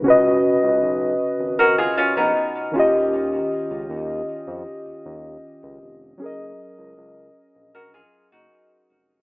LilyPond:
<<
  \new Staff \with { instrumentName = "Synth keys" } { \time 4/4 \key dis \minor \tempo 4 = 78 <cis cis' fis' b' dis''>2.~ <cis cis' fis' b' dis''>8 <dis cis' eis' g' dis''>8~ | <dis cis' eis' g' dis''>2.~ <dis cis' eis' g' dis''>8 r8 | <fis cis' gis' ais' dis''>1 | }
  \new Staff \with { instrumentName = "Nylon-string guitar" } { \time 4/4 \key dis \minor r2 <fis' ais'>16 <eis' gis'>16 <cis' eis'>16 <b dis'>8. r8 | r1 | r2 <fis' ais'>16 <eis' gis'>8 <dis' fis'>4~ <dis' fis'>16 | }
  \new Staff \with { instrumentName = "Analog synth bass" } { \clef bass \time 4/4 \key dis \minor cis,8 r16 cis,16 b,,8 r16 gis,,8. ais,,16 ais,,16 r8 dis,8~ | dis,8 r16 cis,16 dis,8 r16 eis,16 r16 dis,16 dis,8 r16 cis,16 eis,,8 | fis,,8 r16 cis,16 cis,8 r16 ais,,8. r16 fis,,16 r8 eis,,8 | }
>>